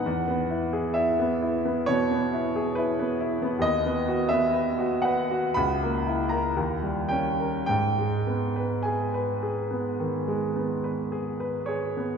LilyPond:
\new Staff \with { instrumentName = "Grand piano" } { \time 4/4 \key e \lydian \tempo 4 = 59 << { fis''4 e''4 cis''4 b'4 | dis''8. e''8. fis''8 b''8. ais''8. g''8 | g''4 gis''2 r8 cis''8 | } \\ { e,16 b16 e'16 gis'16 e'16 b16 e'16 b16 b,16 b16 e'16 gis'16 e'16 b16 e'16 b16 | dis,16 b16 fis'16 b16 b'16 fis'16 b'16 fis'16 cis,16 ais16 e'16 ais'16 dis,16 g16 cis'16 ais'16 | gis,16 gis16 b16 b'16 gis'16 b'16 gis'16 b16 dis16 gis16 b16 b'16 gis'16 b'16 gis'16 b16 | } >> }